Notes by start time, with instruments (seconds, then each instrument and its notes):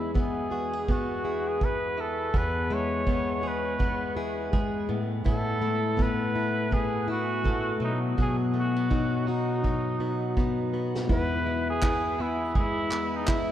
Already playing: steel-string acoustic guitar E2 G#3 G#4, clean electric guitar B3 E4, trumpet E4
0.14 steel-string acoustic guitar B3, clean electric guitar B3, trumpet G#4, kick
0.51 clean electric guitar F#4, steel-string acoustic guitar G#4
0.73 clean electric guitar G#4
0.88 steel-string acoustic guitar B3, clean electric guitar B3, trumpet F#4, kick
1.25 clean electric guitar E4, steel-string acoustic guitar G#4
1.48 trumpet G#4
1.61 trumpet B4, kick
1.98 clean electric guitar E4, trumpet A4
2.34 steel-string acoustic guitar E2 G#4, clean electric guitar B3, trumpet B4, kick
2.70 steel-string acoustic guitar G#3, clean electric guitar E4, trumpet C#5
3.07 clean electric guitar B3, steel-string acoustic guitar B3, kick
3.43 steel-string acoustic guitar G#4, clean electric guitar G#4
3.47 trumpet B4
3.79 steel-string acoustic guitar B3, clean electric guitar B3, kick
4.17 clean electric guitar E4, steel-string acoustic guitar G#4
4.53 steel-string acoustic guitar G#3, clean electric guitar G#4, kick
4.89 steel-string acoustic guitar A2, clean electric guitar B3
5.24 steel-string acoustic guitar A2 E4, clean electric guitar B3, trumpet A4, kick
5.61 steel-string acoustic guitar A3, clean electric guitar E4
5.97 steel-string acoustic guitar B3, clean electric guitar B3, kick
6.02 trumpet B4
6.35 steel-string acoustic guitar E4
6.71 steel-string acoustic guitar B3, clean electric guitar B3, trumpet G#4, kick
7.08 steel-string acoustic guitar E4, clean electric guitar E4, trumpet F#4
7.44 steel-string acoustic guitar A3, clean electric guitar A4, kick
7.80 steel-string acoustic guitar B2, clean electric guitar F#3, trumpet D#4
8.18 steel-string acoustic guitar B2 F#4, clean electric guitar F#3, trumpet G#4, kick
8.54 clean electric guitar A3, steel-string acoustic guitar B3
8.59 trumpet F#4
8.76 clean electric guitar B3
8.90 clean electric guitar F#3, steel-string acoustic guitar D#4, kick
9.27 clean electric guitar D#4, trumpet D#4, steel-string acoustic guitar F#4
9.64 clean electric guitar F#3, steel-string acoustic guitar D#4, kick
10.00 clean electric guitar B3, steel-string acoustic guitar F#4
10.37 steel-string acoustic guitar B3, clean electric guitar D#4, kick
10.73 clean electric guitar B3, steel-string acoustic guitar F#4
10.95 snare
11.07 steel-string acoustic guitar E2 E4, upright piano G#3 E4 B4, clean electric guitar B3, kick
11.12 trumpet B4
11.46 steel-string acoustic guitar B3, clean electric guitar E4
11.70 trumpet G#4
11.82 clean electric guitar B3, steel-string acoustic guitar E4, kick, clap
12.19 steel-string acoustic guitar B3, clean electric guitar E4, trumpet E4
12.55 steel-string acoustic guitar G#3, trumpet E4, clean electric guitar G#4, kick
12.91 clean electric guitar B3, steel-string acoustic guitar B3, clap
13.16 trumpet D#4
13.27 clean electric guitar E4, steel-string acoustic guitar E4, trumpet E4, kick, clap